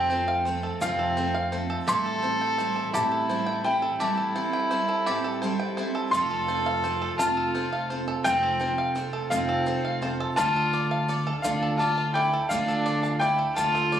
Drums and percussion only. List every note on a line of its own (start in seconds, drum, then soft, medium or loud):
0.46 shaker soft
0.81 shaker medium
1.88 shaker medium
2.59 shaker soft
2.95 shaker loud
6.14 shaker medium
6.85 shaker soft
7.20 shaker loud
8.26 shaker loud
8.97 shaker soft
9.32 shaker loud
10.38 shaker loud
11.09 shaker soft
11.44 shaker loud
12.51 shaker loud
12.68 shaker soft
12.86 shaker soft
13.04 shaker soft
13.22 shaker soft
13.57 shaker medium
13.75 shaker soft
13.93 shaker soft